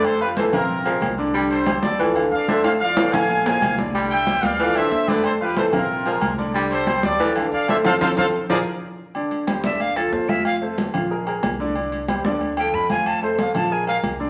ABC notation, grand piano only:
X:1
M:4/4
L:1/8
Q:1/4=184
K:C
V:1 name="Grand piano"
[A,Ac] [F,Ff] [A,Ac] [C,Cf]2 [_A,_A_B]2 [D,Dd] | [D,Dd]2 [G,Gc]2 [F,FA] [D,Af]2 [A,Ac]- | [A,Ac] [F,Ff] [A,Ac] [A,Af]2 [_A,_A_B]2 [D,Dd] | [D,Dd]2 [G,Gc]2 [F,FA] [D,DA]2 [A,Ac]- |
[A,Ac] [F,Ff] [A,Ac] [C,Cf]2 [_A,_A_B]2 [D,Dd] | [D,Dd]2 [G,Gc]2 [F,FA] [D,Af]2 [A,Ac] | [CFA] [CFA] [CFA] z [F_A_B] z3 | [D,Dd]2 [G,Gc] [D,Dd]2 [F,FA]2 [F,Ff]- |
[F,Ff] [A,Ac]2 [F,Ff] [_A,_A_B] [A,AB]2 [D,Dd] | [D,Dd]2 [G,Gc] [D,Dd]2 [F,FA]2 [F,Ff]- | [F,Ff] [A,Ac]2 [F,Ff] [_A,_A_B] [A,AB]2 [D,Dd] |]